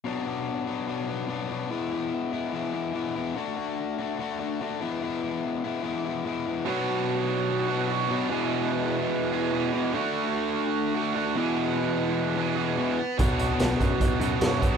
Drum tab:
HH |--------|--------|--------|--------|
SD |--------|--------|--------|--------|
BD |--------|--------|--------|--------|

HH |--------|--------|--------|--------|
SD |--------|--------|--------|--------|
BD |--------|--------|--------|--------|

HH |xxxxxxxx|
SD |--o---o-|
BD |o--oo--o|